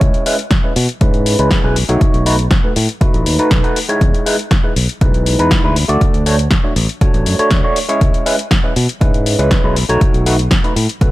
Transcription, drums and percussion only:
0.01 kick, closed hi-hat
0.14 closed hi-hat
0.26 open hi-hat
0.39 closed hi-hat
0.51 kick, snare, closed hi-hat
0.76 open hi-hat
0.89 closed hi-hat
1.01 kick, closed hi-hat
1.14 closed hi-hat
1.26 open hi-hat
1.39 closed hi-hat
1.51 kick, snare, closed hi-hat
1.76 open hi-hat
1.89 closed hi-hat
2.01 kick, closed hi-hat
2.14 closed hi-hat
2.26 open hi-hat
2.39 closed hi-hat
2.51 kick, snare, closed hi-hat
2.76 open hi-hat
2.89 closed hi-hat
3.01 kick, closed hi-hat
3.14 closed hi-hat
3.26 open hi-hat
3.39 closed hi-hat
3.51 kick, snare, closed hi-hat
3.64 closed hi-hat
3.76 open hi-hat
3.89 closed hi-hat
4.01 kick, closed hi-hat
4.14 closed hi-hat
4.26 open hi-hat
4.39 closed hi-hat
4.51 kick, snare, closed hi-hat
4.76 open hi-hat
4.89 closed hi-hat
5.01 kick, closed hi-hat
5.14 closed hi-hat
5.26 open hi-hat
5.39 closed hi-hat
5.51 kick, snare, closed hi-hat
5.76 open hi-hat
5.89 closed hi-hat
6.01 kick, closed hi-hat
6.14 closed hi-hat
6.26 open hi-hat
6.39 closed hi-hat
6.51 kick, snare, closed hi-hat
6.76 open hi-hat
6.89 closed hi-hat
7.01 kick, closed hi-hat
7.14 closed hi-hat
7.26 open hi-hat
7.39 closed hi-hat
7.51 kick, snare, closed hi-hat
7.76 open hi-hat
7.89 closed hi-hat
8.01 kick, closed hi-hat
8.14 closed hi-hat
8.26 open hi-hat
8.39 closed hi-hat
8.51 kick, snare, closed hi-hat
8.76 open hi-hat
8.89 closed hi-hat
9.01 kick, closed hi-hat
9.14 closed hi-hat
9.26 open hi-hat
9.39 closed hi-hat
9.51 kick, snare, closed hi-hat
9.76 open hi-hat
9.89 closed hi-hat
10.01 kick, closed hi-hat
10.14 closed hi-hat
10.26 open hi-hat
10.39 closed hi-hat
10.51 kick, snare, closed hi-hat
10.64 closed hi-hat
10.77 open hi-hat
10.89 closed hi-hat
11.01 kick, closed hi-hat

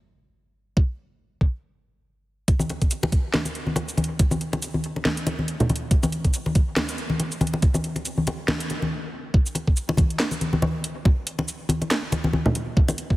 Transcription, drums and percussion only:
0.77 kick
1.41 kick
2.48 kick, closed hi-hat
2.59 high conga, shaker
2.69 closed hi-hat, muted conga
2.82 kick, closed hi-hat
2.91 closed hi-hat, shaker
3.03 muted conga, high conga
3.12 kick, closed hi-hat
3.34 snare, high conga
3.45 closed hi-hat, muted conga, shaker
3.55 closed hi-hat
3.67 high conga
3.76 closed hi-hat, muted conga
3.89 closed hi-hat, shaker
3.97 closed hi-hat, high conga
4.04 closed hi-hat
4.19 kick, closed hi-hat, muted conga
4.31 high conga, shaker
4.41 closed hi-hat
4.53 closed hi-hat, muted conga
4.62 closed hi-hat, shaker
4.74 high conga
4.84 closed hi-hat
4.96 muted conga
5.05 snare, high conga
5.17 closed hi-hat
5.27 closed hi-hat, muted conga
5.39 high conga
5.48 closed hi-hat
5.60 closed hi-hat, low conga
5.69 closed hi-hat, muted conga, high conga
5.76 closed hi-hat
5.91 kick, closed hi-hat
6.03 muted conga, high conga, shaker
6.12 closed hi-hat
6.24 kick, closed hi-hat
6.34 closed hi-hat, shaker
6.46 muted conga, high conga
6.55 kick, closed hi-hat
6.76 snare, muted conga, high conga
6.89 closed hi-hat, shaker
6.98 closed hi-hat
7.10 high conga
7.20 closed hi-hat, muted conga
7.32 closed hi-hat, shaker
7.41 closed hi-hat, high conga
7.47 closed hi-hat
7.54 muted conga
7.62 kick, closed hi-hat
7.74 high conga, shaker
7.84 closed hi-hat
7.96 closed hi-hat, muted conga
8.05 closed hi-hat, shaker
8.18 high conga
8.27 closed hi-hat, muted conga
8.48 snare, high conga
8.60 closed hi-hat
8.70 closed hi-hat, muted conga
8.82 high conga
9.34 kick
9.46 shaker
9.55 closed hi-hat, muted conga
9.67 kick
9.77 shaker
9.89 muted conga
9.97 kick, closed hi-hat, high conga
10.10 closed hi-hat
10.20 snare, clap
10.31 muted conga, shaker
10.41 closed hi-hat, high conga
10.53 high conga
10.62 muted conga, high conga
10.84 closed hi-hat
11.05 kick, muted conga
11.27 closed hi-hat
11.39 muted conga
11.48 shaker
11.69 closed hi-hat, high conga
11.82 closed hi-hat, muted conga
11.91 snare, clap
12.12 closed hi-hat, muted conga, high conga
12.24 high conga
12.33 high conga
12.46 low conga
12.55 closed hi-hat, muted conga
12.77 kick
12.88 muted conga, shaker
12.98 closed hi-hat
13.10 kick

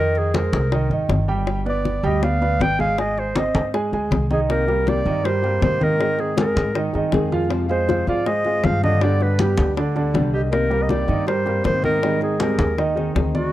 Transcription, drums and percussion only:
0.15 high bongo, high conga
0.34 high bongo, high conga
0.53 high bongo, high conga
0.72 high bongo, high conga
0.91 high bongo, high conga
1.10 high bongo, low bongo, high conga
1.47 high bongo, high conga
1.66 high bongo, high conga
1.85 high bongo, high conga
2.04 high bongo, high conga
2.23 high bongo, high conga
2.42 high bongo, high conga
2.61 high bongo, low bongo, high conga
2.80 high conga
2.98 high bongo, high conga
3.18 high bongo, high conga
3.36 high bongo, high conga
3.55 high bongo, high conga
3.74 high bongo, high conga
3.93 high bongo, high conga
4.12 high bongo, low bongo, high conga
4.31 high conga
4.50 high bongo, high conga
4.68 high bongo, high conga
4.87 high bongo, high conga
5.06 high bongo, high conga
5.25 high bongo, high conga
5.44 high bongo, high conga
5.62 high bongo, low bongo, high conga
5.81 high conga
6.00 high bongo, high conga
6.19 high bongo, high conga
6.37 high bongo, high conga
6.56 high bongo, high conga
6.75 high bongo, high conga
6.94 high bongo, high conga
7.12 high bongo, low bongo, high conga
7.32 high conga
7.50 high bongo, high conga
7.69 high bongo, high conga
7.89 high bongo, high conga
8.07 high bongo, high conga
8.26 high bongo, high conga
8.45 high bongo, high conga
8.64 high bongo, low bongo, high conga
8.84 high conga
9.01 high bongo, high conga
9.21 high bongo, high conga
9.39 high bongo, high conga
9.58 high bongo, high conga
9.77 high bongo, high conga
9.96 high bongo, high conga
10.15 high bongo, low bongo, high conga
10.52 high bongo, high conga
10.71 high bongo, high conga
10.89 high bongo, high conga
11.08 high bongo, high conga
11.27 high bongo, high conga
11.46 high bongo, high conga
11.64 high bongo, low bongo, high conga
11.84 high conga
12.03 high bongo, high conga
12.21 high bongo, high conga
12.40 high bongo, high conga
12.59 high bongo, high conga
12.78 high bongo, high conga
12.97 high bongo, high conga
13.16 high bongo, low bongo, high conga
13.35 high conga

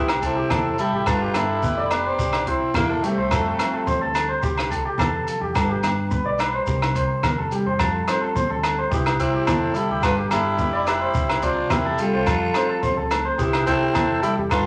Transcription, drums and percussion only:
0.08 cross-stick, low agogo
0.22 kick, closed hi-hat, muted conga, shekere
0.50 kick, cross-stick, high conga, low agogo, shekere
0.78 closed hi-hat, shekere
1.06 kick, cross-stick, muted conga, low agogo, shekere
1.34 cross-stick, closed hi-hat, high conga, low agogo, shekere
1.63 kick, high conga, shekere
1.91 cross-stick, closed hi-hat, muted conga, low agogo, shekere
2.19 kick, muted conga, shekere
2.33 cross-stick, low agogo
2.46 kick, closed hi-hat, muted conga
2.74 kick, cross-stick, high conga, low conga, low agogo, shekere
3.04 closed hi-hat, shekere
3.31 kick, cross-stick, muted conga, low conga, low agogo, shekere
3.59 cross-stick, closed hi-hat, low agogo, shekere
3.87 kick, high conga, shekere
4.15 cross-stick, closed hi-hat, muted conga, low agogo, shekere
4.43 kick, muted conga, shekere
4.58 cross-stick, low agogo
4.71 kick, closed hi-hat, muted conga, shekere
4.98 kick, cross-stick, high conga, low agogo, shekere
5.28 closed hi-hat, shekere
5.55 kick, cross-stick, muted conga, low agogo, shekere
5.83 cross-stick, closed hi-hat, high conga, low agogo, shekere
6.11 kick, high conga, shekere
6.39 cross-stick, closed hi-hat, muted conga, low agogo, shekere
6.67 kick, muted conga, shekere
6.82 cross-stick, low agogo
6.95 kick, closed hi-hat, muted conga, shekere
7.23 kick, cross-stick, high conga, low conga, low agogo, shekere
7.51 closed hi-hat, shekere
7.79 kick, cross-stick, muted conga, low conga, low agogo, shekere
8.08 cross-stick, closed hi-hat, low agogo, shekere
8.36 kick, high conga, shekere
8.63 cross-stick, closed hi-hat, low agogo, shekere
8.91 kick, muted conga, shekere
9.06 cross-stick, low agogo
9.19 kick, closed hi-hat, muted conga, shekere
9.47 kick, cross-stick, high conga, low agogo, shekere
9.74 closed hi-hat, shekere
10.03 kick, cross-stick, muted conga, low agogo, shekere
10.31 cross-stick, closed hi-hat, high conga, low agogo, shekere
10.58 kick, high conga, shekere
10.87 cross-stick, closed hi-hat, muted conga, low agogo, shekere
11.14 kick, muted conga, shekere
11.29 cross-stick, low agogo
11.42 kick, closed hi-hat, muted conga, shekere
11.70 kick, cross-stick, high conga, low conga, low agogo, shekere
11.98 closed hi-hat, shekere
12.26 kick, cross-stick, muted conga, low conga, low agogo, shekere
12.54 cross-stick, closed hi-hat, low agogo, shekere
12.83 kick, high conga, shekere
13.11 cross-stick, closed hi-hat, low agogo, shekere
13.39 kick, muted conga, shekere
13.53 cross-stick, low agogo
13.67 kick, closed hi-hat, muted conga, shekere
13.95 kick, cross-stick, high conga, low agogo, shekere
14.23 closed hi-hat, shekere
14.51 kick, cross-stick, low agogo, shekere

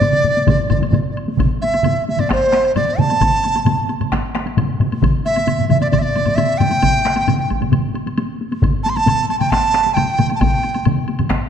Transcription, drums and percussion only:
0.01 taiko low-mid, taiko mid, taiko high, high woodblock
0.13 taiko low-mid, taiko mid
0.24 taiko low-mid, taiko mid
0.37 taiko high
0.47 taiko, taiko low-mid, taiko mid, taiko high, high woodblock
0.70 taiko, taiko low-mid, taiko mid, taiko high, high woodblock
0.81 taiko low-mid, taiko mid, taiko high, high woodblock
0.92 taiko low-mid, taiko mid, taiko high, high woodblock
1.17 high woodblock
1.28 taiko high
1.37 taiko, taiko low-mid, taiko mid, taiko high, high woodblock
1.62 taiko high, high woodblock
1.74 taiko high, high woodblock
1.83 taiko low-mid, taiko mid, taiko high, high woodblock
2.08 taiko high
2.18 taiko low-mid, taiko mid, taiko high, high woodblock
2.29 taiko rim, taiko, taiko high, high woodblock
2.52 taiko rim, taiko high, high woodblock
2.65 high woodblock
2.76 taiko low-mid, taiko mid, taiko high, high woodblock
2.98 taiko low-mid, taiko mid, taiko high
3.10 taiko high, high woodblock
3.21 taiko, taiko low-mid, taiko mid, taiko high, high woodblock
3.44 taiko high, high woodblock
3.56 taiko high, high woodblock
3.66 taiko low-mid, taiko mid, taiko high, high woodblock
3.89 taiko high, high woodblock
4.00 taiko low-mid, taiko mid, taiko high, high woodblock
4.12 taiko rim, taiko, taiko high, high woodblock
4.35 taiko rim, taiko high, high woodblock
4.46 taiko high, high woodblock
4.57 taiko low-mid, taiko mid, taiko high, high woodblock
4.80 taiko low-mid, taiko mid, taiko high, high woodblock
4.92 taiko high, high woodblock
5.02 taiko, taiko low-mid, taiko mid, taiko high, high woodblock
5.26 taiko high, high woodblock
5.36 taiko high, high woodblock
5.47 taiko low-mid, taiko mid, taiko high, high woodblock
5.59 taiko low-mid, taiko mid
5.70 taiko low-mid, taiko mid, taiko high, high woodblock
5.81 taiko high, high woodblock
5.92 taiko, taiko low-mid, taiko mid, taiko high, high woodblock
6.15 taiko low-mid, taiko mid, taiko high, high woodblock
6.26 taiko low-mid, taiko mid, taiko high, high woodblock
6.37 taiko low-mid, taiko mid, taiko high, high woodblock
6.60 taiko low-mid, taiko mid, taiko high, high woodblock
6.71 taiko high, high woodblock
6.82 taiko, taiko low-mid, taiko mid, taiko high, high woodblock
7.05 taiko rim, taiko high, high woodblock
7.16 taiko high, high woodblock
7.27 taiko low-mid, taiko mid, taiko high, high woodblock
7.50 taiko, taiko high, high woodblock
7.61 taiko low-mid, taiko mid, taiko high, high woodblock
7.72 taiko low-mid, taiko mid, taiko high, high woodblock
7.95 taiko high, high woodblock
8.06 taiko high, high woodblock
8.18 taiko high, high woodblock
8.41 taiko high
8.52 taiko high, high woodblock
8.62 taiko, taiko low-mid, taiko mid, taiko high, high woodblock
8.86 taiko high, high woodblock
8.96 taiko high, high woodblock
9.07 taiko low-mid, taiko mid, taiko high, high woodblock
9.30 taiko high, high woodblock
9.40 taiko low-mid, taiko mid, taiko high, high woodblock
9.52 taiko rim, taiko, taiko high, high woodblock
9.74 taiko rim, taiko high, high woodblock
9.86 taiko high
9.96 taiko low-mid, taiko mid, taiko high, high woodblock
10.18 taiko low-mid, taiko mid, taiko high, high woodblock
10.30 taiko high, high woodblock
10.41 taiko, taiko low-mid, taiko mid, taiko high, high woodblock
10.63 taiko high, high woodblock
10.74 taiko high, high woodblock
10.85 taiko low-mid, taiko mid, taiko high, high woodblock
11.08 taiko high, high woodblock
11.19 taiko low-mid, taiko mid, taiko high, high woodblock
11.29 taiko rim, taiko, taiko high, high woodblock

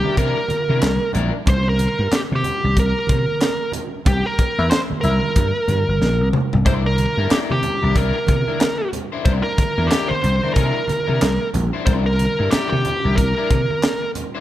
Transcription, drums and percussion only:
0.04 high conga
0.16 kick, closed hi-hat, muted conga
0.48 closed hi-hat, muted conga, high conga
0.68 high conga
0.81 snare, clap, closed hi-hat, muted conga
1.13 closed hi-hat, low conga
1.46 kick, closed hi-hat, low conga
1.78 closed hi-hat, high conga
2.11 snare, clap, closed hi-hat, muted conga
2.31 high conga
2.44 closed hi-hat, muted conga, low conga
2.63 high conga
2.76 kick, closed hi-hat, muted conga
3.07 kick, closed hi-hat, muted conga, high conga
3.26 high conga
3.41 snare, clap, closed hi-hat
3.72 closed hi-hat, muted conga, low conga
4.05 kick, closed hi-hat, muted conga, low conga
4.39 kick, closed hi-hat
4.71 snare, clap, closed hi-hat
4.90 high conga
5.03 closed hi-hat, muted conga, low conga
5.23 high conga
5.36 kick, closed hi-hat
5.68 closed hi-hat, muted conga, high conga
5.87 high conga
6.01 snare, muted conga
6.33 mid tom, low conga
6.53 floor tom
6.66 kick, closed hi-hat, muted conga, low conga
6.98 closed hi-hat, muted conga, high conga
7.30 snare, clap, closed hi-hat
7.50 high conga
7.62 closed hi-hat, low conga
7.82 high conga
7.95 kick, closed hi-hat, muted conga
8.27 kick, closed hi-hat, muted conga, high conga
8.47 high conga
8.60 snare, clap, closed hi-hat
8.93 closed hi-hat, low conga
9.25 kick, closed hi-hat, muted conga, low conga
9.58 kick, closed hi-hat, muted conga, high conga
9.90 snare, clap, closed hi-hat, muted conga
10.10 high conga
10.22 closed hi-hat, low conga
10.43 high conga
10.55 kick, closed hi-hat, muted conga
10.88 closed hi-hat, high conga
11.08 high conga
11.21 snare, clap, closed hi-hat
11.54 closed hi-hat, muted conga, low conga
11.87 kick, closed hi-hat, low conga
12.19 closed hi-hat, muted conga, high conga
12.52 snare, clap, closed hi-hat, muted conga
12.73 high conga
12.85 closed hi-hat, muted conga, low conga
13.05 high conga
13.18 kick, closed hi-hat
13.50 kick, closed hi-hat, high conga
13.70 high conga
13.83 snare, clap, closed hi-hat
14.15 closed hi-hat, muted conga, low conga

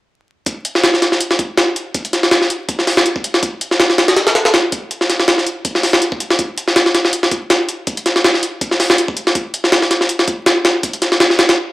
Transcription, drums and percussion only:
0.46 kick, closed hi-hat
0.65 closed hi-hat
0.75 snare
0.84 snare, closed hi-hat
0.94 snare
1.02 snare, closed hi-hat
1.12 snare
1.20 closed hi-hat
1.31 snare
1.39 kick, closed hi-hat
1.57 snare, closed hi-hat
1.76 closed hi-hat
1.94 kick, closed hi-hat
2.05 closed hi-hat
2.13 snare, closed hi-hat
2.23 snare
2.31 snare, closed hi-hat
2.42 snare
2.50 closed hi-hat
2.69 kick, closed hi-hat
2.79 snare
2.87 snare, open hi-hat
2.97 snare
3.06 closed hi-hat
3.16 kick
3.24 closed hi-hat
3.34 snare
3.43 kick, closed hi-hat
3.61 closed hi-hat
3.71 snare
3.80 snare, closed hi-hat
3.90 snare
3.98 snare, closed hi-hat
4.08 snare, closed hi-hat
4.17 snare, closed hi-hat
4.27 snare, closed hi-hat
4.35 snare, closed hi-hat
4.45 snare, closed hi-hat
4.54 snare, closed hi-hat
4.72 kick, closed hi-hat
4.91 closed hi-hat
5.01 snare
5.10 snare, closed hi-hat
5.20 snare
5.28 snare, closed hi-hat
5.38 snare
5.47 closed hi-hat
5.65 kick, closed hi-hat
5.75 snare
5.83 snare, open hi-hat
5.93 snare
6.02 closed hi-hat
6.12 kick
6.20 closed hi-hat
6.30 snare
6.39 kick, closed hi-hat
6.58 closed hi-hat
6.68 snare
6.76 snare, closed hi-hat
6.86 snare
6.95 snare, closed hi-hat
7.05 snare
7.13 closed hi-hat
7.23 snare
7.31 kick, closed hi-hat
7.50 snare, closed hi-hat
7.69 closed hi-hat
7.87 kick, closed hi-hat
7.97 closed hi-hat
8.06 snare, closed hi-hat
8.16 snare
8.24 snare, closed hi-hat
8.34 snare
8.43 closed hi-hat
8.61 kick, closed hi-hat
8.71 snare
8.80 snare, open hi-hat
8.90 snare
8.98 closed hi-hat
9.08 kick
9.17 closed hi-hat
9.27 snare
9.35 kick, closed hi-hat
9.54 closed hi-hat
9.64 snare
9.72 snare, closed hi-hat
9.82 snare
9.91 snare, closed hi-hat
10.01 snare
10.09 closed hi-hat
10.19 snare
10.28 kick, closed hi-hat
10.46 snare, closed hi-hat
10.65 snare, closed hi-hat
10.83 kick, closed hi-hat
10.93 closed hi-hat
11.02 snare, closed hi-hat
11.12 snare
11.20 snare, closed hi-hat
11.30 snare
11.39 snare, closed hi-hat
11.49 snare, closed hi-hat

